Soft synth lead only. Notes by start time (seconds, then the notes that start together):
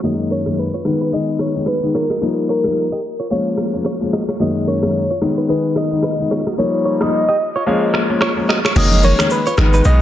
0.04 D#5
0.32 C#5
0.59 B4
1.14 D#5
1.41 C#5
1.69 B4
1.96 A#4
2.50 A#4
3.32 C#5
4.41 D#5
4.68 C#5
5.50 B4
5.77 D#5
6.59 C#5
7.02 D#5
8.77 D#5
9.04 C#5
9.32 B4
9.86 D#5